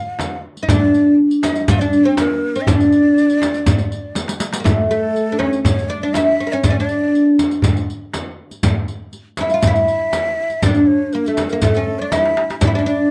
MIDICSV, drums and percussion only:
0, 0, Header, 1, 4, 480
1, 0, Start_track
1, 0, Tempo, 497100
1, 668, Time_signature, 4, 2, 24, 8
1, 12656, End_track
2, 0, Start_track
2, 0, Title_t, "Darbuka"
2, 180, Note_on_c, 9, 63, 60
2, 277, Note_off_c, 9, 63, 0
2, 661, Note_on_c, 9, 64, 95
2, 758, Note_off_c, 9, 64, 0
2, 903, Note_on_c, 9, 62, 29
2, 999, Note_off_c, 9, 62, 0
2, 1381, Note_on_c, 9, 63, 63
2, 1478, Note_off_c, 9, 63, 0
2, 1623, Note_on_c, 9, 64, 90
2, 1720, Note_off_c, 9, 64, 0
2, 2102, Note_on_c, 9, 63, 62
2, 2199, Note_off_c, 9, 63, 0
2, 2577, Note_on_c, 9, 64, 85
2, 2673, Note_off_c, 9, 64, 0
2, 2701, Note_on_c, 9, 62, 26
2, 2797, Note_off_c, 9, 62, 0
2, 3067, Note_on_c, 9, 62, 27
2, 3163, Note_off_c, 9, 62, 0
2, 3186, Note_on_c, 9, 62, 25
2, 3283, Note_off_c, 9, 62, 0
2, 3309, Note_on_c, 9, 63, 64
2, 3406, Note_off_c, 9, 63, 0
2, 3550, Note_on_c, 9, 64, 89
2, 3647, Note_off_c, 9, 64, 0
2, 3669, Note_on_c, 9, 62, 24
2, 3766, Note_off_c, 9, 62, 0
2, 3782, Note_on_c, 9, 62, 27
2, 3878, Note_off_c, 9, 62, 0
2, 4019, Note_on_c, 9, 63, 50
2, 4116, Note_off_c, 9, 63, 0
2, 4133, Note_on_c, 9, 62, 72
2, 4229, Note_off_c, 9, 62, 0
2, 4250, Note_on_c, 9, 63, 67
2, 4346, Note_off_c, 9, 63, 0
2, 4371, Note_on_c, 9, 62, 81
2, 4467, Note_off_c, 9, 62, 0
2, 4497, Note_on_c, 9, 64, 76
2, 4594, Note_off_c, 9, 64, 0
2, 4977, Note_on_c, 9, 62, 22
2, 5074, Note_off_c, 9, 62, 0
2, 5211, Note_on_c, 9, 63, 58
2, 5308, Note_off_c, 9, 63, 0
2, 5347, Note_on_c, 9, 62, 20
2, 5443, Note_off_c, 9, 62, 0
2, 5455, Note_on_c, 9, 64, 75
2, 5551, Note_off_c, 9, 64, 0
2, 5582, Note_on_c, 9, 62, 23
2, 5678, Note_off_c, 9, 62, 0
2, 5937, Note_on_c, 9, 63, 56
2, 6034, Note_off_c, 9, 63, 0
2, 6295, Note_on_c, 9, 62, 25
2, 6392, Note_off_c, 9, 62, 0
2, 6412, Note_on_c, 9, 64, 81
2, 6509, Note_off_c, 9, 64, 0
2, 6653, Note_on_c, 9, 62, 26
2, 6749, Note_off_c, 9, 62, 0
2, 6891, Note_on_c, 9, 62, 28
2, 6988, Note_off_c, 9, 62, 0
2, 7248, Note_on_c, 9, 62, 23
2, 7345, Note_off_c, 9, 62, 0
2, 7361, Note_on_c, 9, 64, 86
2, 7458, Note_off_c, 9, 64, 0
2, 7493, Note_on_c, 9, 62, 26
2, 7590, Note_off_c, 9, 62, 0
2, 7855, Note_on_c, 9, 63, 58
2, 7952, Note_off_c, 9, 63, 0
2, 8221, Note_on_c, 9, 62, 28
2, 8317, Note_off_c, 9, 62, 0
2, 8334, Note_on_c, 9, 64, 90
2, 8430, Note_off_c, 9, 64, 0
2, 8452, Note_on_c, 9, 62, 31
2, 8549, Note_off_c, 9, 62, 0
2, 8580, Note_on_c, 9, 62, 28
2, 8677, Note_off_c, 9, 62, 0
2, 8817, Note_on_c, 9, 62, 30
2, 8914, Note_off_c, 9, 62, 0
2, 9050, Note_on_c, 9, 63, 67
2, 9146, Note_off_c, 9, 63, 0
2, 9176, Note_on_c, 9, 62, 23
2, 9273, Note_off_c, 9, 62, 0
2, 9296, Note_on_c, 9, 64, 86
2, 9393, Note_off_c, 9, 64, 0
2, 9420, Note_on_c, 9, 62, 24
2, 9517, Note_off_c, 9, 62, 0
2, 9782, Note_on_c, 9, 63, 59
2, 9879, Note_off_c, 9, 63, 0
2, 10137, Note_on_c, 9, 62, 27
2, 10234, Note_off_c, 9, 62, 0
2, 10259, Note_on_c, 9, 64, 91
2, 10355, Note_off_c, 9, 64, 0
2, 10386, Note_on_c, 9, 62, 28
2, 10482, Note_off_c, 9, 62, 0
2, 10504, Note_on_c, 9, 62, 25
2, 10600, Note_off_c, 9, 62, 0
2, 10745, Note_on_c, 9, 62, 27
2, 10842, Note_off_c, 9, 62, 0
2, 10873, Note_on_c, 9, 62, 23
2, 10969, Note_off_c, 9, 62, 0
2, 10990, Note_on_c, 9, 63, 57
2, 11087, Note_off_c, 9, 63, 0
2, 11109, Note_on_c, 9, 62, 24
2, 11206, Note_off_c, 9, 62, 0
2, 11223, Note_on_c, 9, 64, 91
2, 11319, Note_off_c, 9, 64, 0
2, 11356, Note_on_c, 9, 62, 23
2, 11453, Note_off_c, 9, 62, 0
2, 11471, Note_on_c, 9, 62, 26
2, 11568, Note_off_c, 9, 62, 0
2, 11709, Note_on_c, 9, 63, 48
2, 11806, Note_off_c, 9, 63, 0
2, 11835, Note_on_c, 9, 62, 65
2, 11932, Note_off_c, 9, 62, 0
2, 11946, Note_on_c, 9, 63, 71
2, 12042, Note_off_c, 9, 63, 0
2, 12075, Note_on_c, 9, 62, 86
2, 12172, Note_off_c, 9, 62, 0
2, 12190, Note_on_c, 9, 64, 90
2, 12286, Note_off_c, 9, 64, 0
2, 12318, Note_on_c, 9, 62, 24
2, 12414, Note_off_c, 9, 62, 0
2, 12443, Note_on_c, 9, 62, 24
2, 12539, Note_off_c, 9, 62, 0
2, 12656, End_track
3, 0, Start_track
3, 0, Title_t, "Frame drum"
3, 188, Note_on_c, 9, 64, 76
3, 285, Note_off_c, 9, 64, 0
3, 662, Note_on_c, 9, 64, 87
3, 758, Note_off_c, 9, 64, 0
3, 1386, Note_on_c, 9, 64, 70
3, 1482, Note_off_c, 9, 64, 0
3, 1624, Note_on_c, 9, 64, 86
3, 1720, Note_off_c, 9, 64, 0
3, 2099, Note_on_c, 9, 64, 76
3, 2195, Note_off_c, 9, 64, 0
3, 2582, Note_on_c, 9, 64, 94
3, 2679, Note_off_c, 9, 64, 0
3, 3299, Note_on_c, 9, 64, 63
3, 3396, Note_off_c, 9, 64, 0
3, 3537, Note_on_c, 9, 64, 93
3, 3634, Note_off_c, 9, 64, 0
3, 4011, Note_on_c, 9, 64, 64
3, 4108, Note_off_c, 9, 64, 0
3, 4493, Note_on_c, 9, 64, 93
3, 4589, Note_off_c, 9, 64, 0
3, 5214, Note_on_c, 9, 64, 62
3, 5311, Note_off_c, 9, 64, 0
3, 5453, Note_on_c, 9, 64, 78
3, 5550, Note_off_c, 9, 64, 0
3, 5931, Note_on_c, 9, 64, 71
3, 6027, Note_off_c, 9, 64, 0
3, 6411, Note_on_c, 9, 64, 76
3, 6508, Note_off_c, 9, 64, 0
3, 7138, Note_on_c, 9, 64, 64
3, 7234, Note_off_c, 9, 64, 0
3, 7379, Note_on_c, 9, 64, 78
3, 7476, Note_off_c, 9, 64, 0
3, 7861, Note_on_c, 9, 64, 64
3, 7958, Note_off_c, 9, 64, 0
3, 8337, Note_on_c, 9, 64, 92
3, 8434, Note_off_c, 9, 64, 0
3, 9062, Note_on_c, 9, 64, 65
3, 9159, Note_off_c, 9, 64, 0
3, 9301, Note_on_c, 9, 64, 84
3, 9397, Note_off_c, 9, 64, 0
3, 9779, Note_on_c, 9, 64, 68
3, 9876, Note_off_c, 9, 64, 0
3, 10263, Note_on_c, 9, 64, 92
3, 10360, Note_off_c, 9, 64, 0
3, 10987, Note_on_c, 9, 64, 70
3, 11084, Note_off_c, 9, 64, 0
3, 11227, Note_on_c, 9, 64, 85
3, 11323, Note_off_c, 9, 64, 0
3, 11702, Note_on_c, 9, 64, 81
3, 11799, Note_off_c, 9, 64, 0
3, 12179, Note_on_c, 9, 64, 88
3, 12275, Note_off_c, 9, 64, 0
3, 12656, End_track
4, 0, Start_track
4, 0, Title_t, "Riq"
4, 197, Note_on_c, 9, 54, 47
4, 294, Note_off_c, 9, 54, 0
4, 550, Note_on_c, 9, 54, 18
4, 646, Note_off_c, 9, 54, 0
4, 672, Note_on_c, 9, 54, 61
4, 769, Note_off_c, 9, 54, 0
4, 911, Note_on_c, 9, 54, 15
4, 1007, Note_off_c, 9, 54, 0
4, 1265, Note_on_c, 9, 54, 18
4, 1362, Note_off_c, 9, 54, 0
4, 1383, Note_on_c, 9, 54, 46
4, 1480, Note_off_c, 9, 54, 0
4, 1501, Note_on_c, 9, 54, 20
4, 1598, Note_off_c, 9, 54, 0
4, 1623, Note_on_c, 9, 54, 54
4, 1719, Note_off_c, 9, 54, 0
4, 1746, Note_on_c, 9, 54, 20
4, 1842, Note_off_c, 9, 54, 0
4, 1863, Note_on_c, 9, 54, 19
4, 1960, Note_off_c, 9, 54, 0
4, 2103, Note_on_c, 9, 54, 55
4, 2199, Note_off_c, 9, 54, 0
4, 2466, Note_on_c, 9, 54, 17
4, 2563, Note_off_c, 9, 54, 0
4, 2589, Note_on_c, 9, 54, 60
4, 2685, Note_off_c, 9, 54, 0
4, 2708, Note_on_c, 9, 54, 18
4, 2805, Note_off_c, 9, 54, 0
4, 2824, Note_on_c, 9, 54, 16
4, 2920, Note_off_c, 9, 54, 0
4, 3071, Note_on_c, 9, 54, 19
4, 3167, Note_off_c, 9, 54, 0
4, 3184, Note_on_c, 9, 54, 19
4, 3280, Note_off_c, 9, 54, 0
4, 3310, Note_on_c, 9, 54, 50
4, 3407, Note_off_c, 9, 54, 0
4, 3420, Note_on_c, 9, 54, 18
4, 3517, Note_off_c, 9, 54, 0
4, 3538, Note_on_c, 9, 54, 63
4, 3635, Note_off_c, 9, 54, 0
4, 3654, Note_on_c, 9, 54, 20
4, 3751, Note_off_c, 9, 54, 0
4, 3784, Note_on_c, 9, 54, 18
4, 3880, Note_off_c, 9, 54, 0
4, 4017, Note_on_c, 9, 54, 57
4, 4113, Note_off_c, 9, 54, 0
4, 4142, Note_on_c, 9, 54, 63
4, 4239, Note_off_c, 9, 54, 0
4, 4250, Note_on_c, 9, 54, 72
4, 4347, Note_off_c, 9, 54, 0
4, 4378, Note_on_c, 9, 54, 76
4, 4475, Note_off_c, 9, 54, 0
4, 4497, Note_on_c, 9, 54, 61
4, 4593, Note_off_c, 9, 54, 0
4, 4740, Note_on_c, 9, 54, 16
4, 4836, Note_off_c, 9, 54, 0
4, 4982, Note_on_c, 9, 54, 18
4, 5079, Note_off_c, 9, 54, 0
4, 5338, Note_on_c, 9, 54, 18
4, 5434, Note_off_c, 9, 54, 0
4, 5462, Note_on_c, 9, 54, 61
4, 5558, Note_off_c, 9, 54, 0
4, 5588, Note_on_c, 9, 54, 16
4, 5684, Note_off_c, 9, 54, 0
4, 5940, Note_on_c, 9, 54, 57
4, 6037, Note_off_c, 9, 54, 0
4, 6301, Note_on_c, 9, 54, 14
4, 6398, Note_off_c, 9, 54, 0
4, 6406, Note_on_c, 9, 54, 60
4, 6503, Note_off_c, 9, 54, 0
4, 6650, Note_on_c, 9, 54, 14
4, 6747, Note_off_c, 9, 54, 0
4, 6905, Note_on_c, 9, 54, 15
4, 7002, Note_off_c, 9, 54, 0
4, 7138, Note_on_c, 9, 54, 53
4, 7235, Note_off_c, 9, 54, 0
4, 7253, Note_on_c, 9, 54, 17
4, 7350, Note_off_c, 9, 54, 0
4, 7374, Note_on_c, 9, 54, 63
4, 7470, Note_off_c, 9, 54, 0
4, 7499, Note_on_c, 9, 54, 17
4, 7596, Note_off_c, 9, 54, 0
4, 7627, Note_on_c, 9, 54, 17
4, 7724, Note_off_c, 9, 54, 0
4, 7858, Note_on_c, 9, 54, 48
4, 7954, Note_off_c, 9, 54, 0
4, 8220, Note_on_c, 9, 54, 17
4, 8317, Note_off_c, 9, 54, 0
4, 8334, Note_on_c, 9, 54, 68
4, 8431, Note_off_c, 9, 54, 0
4, 8574, Note_on_c, 9, 54, 15
4, 8671, Note_off_c, 9, 54, 0
4, 8813, Note_on_c, 9, 54, 19
4, 8910, Note_off_c, 9, 54, 0
4, 9051, Note_on_c, 9, 54, 47
4, 9147, Note_off_c, 9, 54, 0
4, 9170, Note_on_c, 9, 54, 18
4, 9267, Note_off_c, 9, 54, 0
4, 9293, Note_on_c, 9, 54, 64
4, 9390, Note_off_c, 9, 54, 0
4, 9421, Note_on_c, 9, 54, 16
4, 9517, Note_off_c, 9, 54, 0
4, 9541, Note_on_c, 9, 54, 16
4, 9638, Note_off_c, 9, 54, 0
4, 9782, Note_on_c, 9, 54, 55
4, 9879, Note_off_c, 9, 54, 0
4, 10137, Note_on_c, 9, 54, 15
4, 10234, Note_off_c, 9, 54, 0
4, 10260, Note_on_c, 9, 54, 57
4, 10356, Note_off_c, 9, 54, 0
4, 10375, Note_on_c, 9, 54, 15
4, 10472, Note_off_c, 9, 54, 0
4, 10743, Note_on_c, 9, 54, 16
4, 10839, Note_off_c, 9, 54, 0
4, 10873, Note_on_c, 9, 54, 16
4, 10970, Note_off_c, 9, 54, 0
4, 10981, Note_on_c, 9, 54, 49
4, 11077, Note_off_c, 9, 54, 0
4, 11099, Note_on_c, 9, 54, 16
4, 11196, Note_off_c, 9, 54, 0
4, 11217, Note_on_c, 9, 54, 60
4, 11313, Note_off_c, 9, 54, 0
4, 11339, Note_on_c, 9, 54, 17
4, 11436, Note_off_c, 9, 54, 0
4, 11705, Note_on_c, 9, 54, 48
4, 11802, Note_off_c, 9, 54, 0
4, 12070, Note_on_c, 9, 54, 15
4, 12166, Note_off_c, 9, 54, 0
4, 12178, Note_on_c, 9, 54, 61
4, 12274, Note_off_c, 9, 54, 0
4, 12421, Note_on_c, 9, 54, 13
4, 12517, Note_off_c, 9, 54, 0
4, 12656, End_track
0, 0, End_of_file